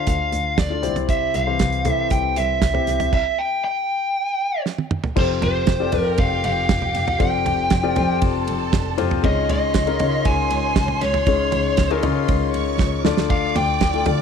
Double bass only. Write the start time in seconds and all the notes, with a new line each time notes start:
0.07 D2
0.33 D2
0.58 D2
0.84 C2
1.35 C2
1.60 C2
1.86 C3
2.11 C2
2.37 C2
2.62 C2
2.88 C2
5.17 F1
5.42 F1
5.68 F1
5.94 F2
6.19 F1
6.44 F1
6.69 F1
6.96 F1
7.20 F1
7.46 F1
7.71 F1
7.97 F2
8.22 F1
8.48 F1
8.73 F1
8.99 F1
9.24 C#2
9.50 C#2
9.75 C#2
10.01 C#3
10.26 C#2
10.51 C#2
10.76 C#2
11.02 C#2
11.27 C#2
11.53 C#2
11.78 C#2
12.04 C#3
12.29 C#2
12.54 C#2
12.80 C#2
13.05 D2
13.56 D2
13.82 D2
14.06 D3